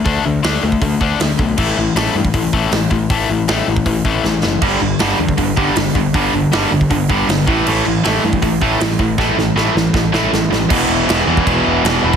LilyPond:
<<
  \new Staff \with { instrumentName = "Distorted electric guitar" } { \clef bass \time 4/4 \key g \lydian \tempo 4 = 158 <d a d'>8 <d a>8 <d a d'>8 <d a>8 <d a>8 <d a d'>8 <d a>8 <d a>8 | <a, e a>8 <a, e>8 <a, e a>8 <a, e>8 <a, e>8 <a, e a>8 <a, e>8 <a, e>8 | <a, e a>8 <a, e>8 <a, e a>8 <a, e>8 <a, e>8 <a, e a>8 <a, e>8 <a, e>8 | <g, d g>8 <g, d>8 <g, d g>8 <g, d>8 <g, d>8 <g, d g>8 <g, d>8 <g, d>8 |
<g, d g>8 <g, d>8 <g, d g>8 <g, d>8 <g, d>8 <g, d g>8 <g, d>8 <a, e a>8 | <a, e a>8 <a, e>8 <a, e a>8 <a, e>8 <a, e>8 <a, e a>8 <a, e>8 <a, e>8 | <a, e a>8 <a, e>8 <a, e a>8 <a, e>8 <a, e>8 <a, e a>8 <a, e>8 <a, e>8 | \key e \mixolydian <e, b, e>4 <e, b, e>8 <e, b, e>8 <e, b, e>4 <e, b, e>8 <e, b, e>8 | }
  \new Staff \with { instrumentName = "Distorted electric guitar" } { \clef bass \time 4/4 \key g \lydian r1 | r1 | r1 | <g, d g>8 <g, d>8 <g, d g>8 <g, d>8 <g, d>8 <g, d g>8 <g, d>8 <g, d>8 |
<g, d g>8 <g, d>8 <g, d g>8 <g, d>8 <g, d>8 <g, d g>8 <g, d>8 <a, e a>8 | <a, e a>8 <a, e>8 <a, e a>8 <a, e>8 <a, e>8 <a, e a>8 <a, e>8 <a, e>8 | <a, e a>8 <a, e>8 <a, e a>8 <a, e>8 <a, e>8 <a, e a>8 <a, e>8 <a, e>8 | \key e \mixolydian <e, b, e>4 <e, b, e>8 <e, b, e>8 <e, b, e>4 <e, b, e>8 <e, b, e>8 | }
  \new Staff \with { instrumentName = "Picked electric bass" } { \clef bass \time 4/4 \key g \lydian d,8 d,8 d,8 d,8 d,8 d,8 d,8 b,,8 | a,,8 a,,8 a,,8 g,8 a,,8 a,,8 a,,8 a,,8 | a,,8 a,,8 a,,8 a,,8 a,,8 a,,8 a,,8 fis,,8 | g,,8 g,,8 g,,8 e,8 g,,8 g,,8 g,,8 g,,8 |
g,,8 g,,8 g,,8 g,,8 g,,8 g,,8 g,,8 a,,8 | a,,8 a,,8 a,,8 g,8 a,,8 a,,8 a,,8 a,,8 | a,,8 a,,8 a,,8 a,,8 a,,8 a,,8 a,,8 a,,8 | \key e \mixolydian e,,8 e,,8 e,,8 e,8 e,,8 e,,8 e,,8 e,,8 | }
  \new DrumStaff \with { instrumentName = "Drums" } \drummode { \time 4/4 <hho bd>4 <hho sn>8. bd16 <hho bd>8 bd8 <hho sn>8 bd8 | <cymc bd>4 <hho sn>8. bd16 <hho bd>8 bd8 <hho sn>8 bd8 | <hho bd>4 <hho sn>8. bd16 <hho bd>8 bd8 sn8 sn8 | <cymc bd>4 <hho sn>8. bd16 <hho bd>8 bd8 <hho sn>8 bd8 |
<hho bd>4 <hho sn>8. bd16 <hho bd>8 bd8 <hho sn>8 bd8 | cymc4 <hho sn>8. bd16 <hho bd>8 bd8 <hho sn>8 bd8 | <bd sn>8 sn8 sn8 sn8 <bd sn>8 sn8 sn8 sn8 | <cymc bd>4 <cymc sn>8. bd16 <cymc bd>4 <cymc sn>4 | }
>>